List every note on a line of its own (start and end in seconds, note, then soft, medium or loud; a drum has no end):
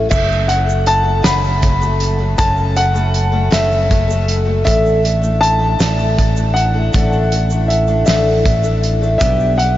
0.00 0.11 G2 soft
0.09 1.21 F#1 medium
0.09 0.48 F#2 medium
0.09 0.48 C#3 medium
0.09 0.46 F#3 medium
0.09 0.46 A3 medium
0.09 0.47 C#4 medium
0.09 0.47 A4 medium
0.09 0.46 E5 medium
0.09 kick loud
0.09 crash medium
0.09 shaker medium
0.32 shaker soft
0.47 0.67 F#3 soft
0.47 0.66 A3 soft
0.47 0.66 C#4 medium
0.47 0.65 A4 medium
0.47 0.88 F#5 medium
0.47 closed hi-hat medium
0.66 1.04 F#3 soft
0.66 1.04 A3 soft
0.66 1.03 C#4 medium
0.66 1.02 A4 soft
0.66 shaker medium
0.86 1.22 A5 loud
0.86 closed hi-hat medium
1.03 1.22 F#3 soft
1.03 1.22 A3 soft
1.03 1.23 C#4 soft
1.03 1.23 A4 medium
1.22 2.35 F#1 medium
1.22 1.61 F#2 medium
1.22 1.62 C#3 medium
1.22 1.60 F#3 medium
1.22 1.60 A3 medium
1.22 1.61 C#4 medium
1.22 1.62 A4 medium
1.22 2.34 B5 medium
1.22 snare loud
1.22 closed hi-hat medium
1.22 shaker loud
1.45 shaker soft
1.61 1.81 F#3 soft
1.61 1.80 A3 medium
1.61 1.80 C#4 medium
1.61 1.79 A4 medium
1.61 kick medium
1.61 closed hi-hat medium
1.80 2.20 F#3 soft
1.80 2.19 A3 soft
1.80 2.19 C#4 soft
1.80 2.17 A4 soft
1.80 shaker medium
2.00 closed hi-hat medium
2.19 2.37 F#3 soft
2.19 2.37 A3 soft
2.19 2.37 C#4 soft
2.19 2.38 A4 soft
2.38 3.49 F#1 loud
2.38 2.76 F#2 medium
2.38 2.76 C#3 medium
2.38 2.74 F#3 medium
2.38 2.75 A3 medium
2.38 2.75 C#4 medium
2.38 2.76 A4 medium
2.38 2.77 A5 loud
2.38 kick medium
2.38 closed hi-hat medium
2.38 shaker medium
2.57 shaker soft
2.75 2.94 F#3 soft
2.75 2.93 A3 medium
2.75 2.93 C#4 soft
2.75 2.92 A4 medium
2.75 3.55 F#5 loud
2.75 closed hi-hat medium
2.93 3.33 F#3 soft
2.93 3.32 A3 soft
2.93 3.32 C#4 medium
2.93 3.31 A4 medium
2.93 shaker medium
3.14 closed hi-hat medium
3.32 3.49 F#3 soft
3.32 3.50 A3 soft
3.32 3.50 C#4 soft
3.32 3.50 A4 medium
3.50 4.62 F#1 medium
3.50 3.89 F#2 medium
3.50 3.89 C#3 medium
3.50 3.88 F#3 medium
3.50 3.88 A3 medium
3.50 3.89 C#4 medium
3.50 3.90 A4 medium
3.50 4.34 E5 loud
3.50 snare loud
3.50 closed hi-hat medium
3.50 shaker loud
3.72 shaker soft
3.89 4.08 F#3 medium
3.89 4.07 A3 medium
3.89 4.07 C#4 medium
3.89 4.06 A4 medium
3.89 kick medium
3.89 closed hi-hat medium
4.08 4.46 F#3 soft
4.08 4.45 A3 soft
4.08 4.45 C#4 soft
4.08 4.44 A4 soft
4.08 shaker medium
4.28 closed hi-hat medium
4.45 4.65 F#3 soft
4.45 4.64 A3 soft
4.45 4.65 C#4 soft
4.45 4.64 A4 soft
4.64 5.76 A1 loud
4.64 5.03 A2 medium
4.64 5.03 D3 medium
4.64 5.01 E3 medium
4.64 5.02 A3 medium
4.64 5.02 D4 medium
4.64 5.03 A4 medium
4.64 5.44 E5 medium
4.64 kick medium
4.64 closed hi-hat medium
4.64 shaker medium
4.86 shaker soft
5.02 5.22 E3 soft
5.02 5.22 A3 medium
5.02 5.21 D4 medium
5.02 5.20 A4 medium
5.02 closed hi-hat medium
5.21 5.60 E3 soft
5.21 5.60 A3 soft
5.21 5.59 D4 soft
5.21 5.58 A4 soft
5.21 shaker medium
5.41 6.58 A5 loud
5.41 closed hi-hat medium
5.59 5.78 E3 soft
5.59 5.78 A3 soft
5.59 5.79 D4 medium
5.59 5.79 A4 medium
5.79 6.90 A1 medium
5.79 6.17 A2 medium
5.79 6.17 D3 medium
5.79 6.15 E3 medium
5.79 6.16 A3 medium
5.79 6.16 D4 medium
5.79 6.17 A4 medium
5.79 snare loud
5.79 closed hi-hat medium
5.79 shaker medium
5.99 shaker soft
6.16 6.36 E3 medium
6.16 6.35 A3 soft
6.16 6.34 D4 medium
6.16 6.34 A4 medium
6.16 kick medium
6.16 closed hi-hat medium
6.35 6.75 E3 soft
6.35 6.74 A3 soft
6.35 6.73 D4 soft
6.35 6.73 A4 soft
6.35 shaker medium
6.54 7.72 F#5 loud
6.54 closed hi-hat medium
6.74 6.92 E3 soft
6.74 6.93 A3 soft
6.74 6.93 D4 soft
6.74 6.93 A4 soft
6.93 8.04 A1 medium
6.93 7.31 A2 medium
6.93 7.31 D3 medium
6.93 7.29 E3 medium
6.93 7.30 A3 medium
6.93 7.31 D4 medium
6.93 7.32 A4 medium
6.93 kick medium
6.93 closed hi-hat medium
6.93 shaker medium
7.13 shaker soft
7.31 7.50 E3 soft
7.31 7.50 A3 soft
7.31 7.50 D4 medium
7.31 7.49 A4 soft
7.31 closed hi-hat medium
7.50 7.88 E3 soft
7.50 7.87 A3 soft
7.50 7.87 D4 soft
7.50 7.87 A4 soft
7.50 shaker medium
7.68 8.04 E5 medium
7.68 closed hi-hat medium
7.87 8.05 E3 soft
7.87 8.06 A3 soft
7.87 8.06 D4 soft
7.87 8.06 A4 soft
7.87 shaker soft
8.06 9.17 A1 medium
8.06 8.45 A2 medium
8.06 8.45 D3 medium
8.06 8.43 E3 medium
8.06 8.44 A3 medium
8.06 8.45 D4 medium
8.06 8.45 A4 medium
8.06 8.88 E5 medium
8.06 snare loud
8.06 closed hi-hat medium
8.06 shaker medium
8.44 8.64 E3 medium
8.44 8.63 A3 soft
8.44 8.62 D4 medium
8.44 8.62 A4 medium
8.44 kick medium
8.44 closed hi-hat soft
8.44 shaker soft
8.63 9.02 E3 soft
8.63 9.01 A3 soft
8.63 9.01 D4 soft
8.63 9.00 A4 soft
8.63 shaker medium
8.83 closed hi-hat soft
8.83 shaker soft
9.01 9.19 E3 soft
9.01 9.19 A3 soft
9.01 9.19 D4 soft
9.01 9.20 A4 soft
9.01 shaker soft
9.18 9.78 B1 medium
9.18 9.58 B2 medium
9.18 9.55 G3 medium
9.18 9.56 B3 medium
9.18 9.56 D4 medium
9.18 9.57 G4 medium
9.18 9.58 E5 medium
9.18 kick medium
9.18 closed hi-hat medium
9.18 shaker medium
9.40 shaker soft
9.56 9.76 G3 soft
9.56 9.75 B3 soft
9.56 9.75 D4 medium
9.56 9.73 G4 medium
9.56 9.78 F#5 medium
9.56 closed hi-hat medium
9.74 9.78 G4 soft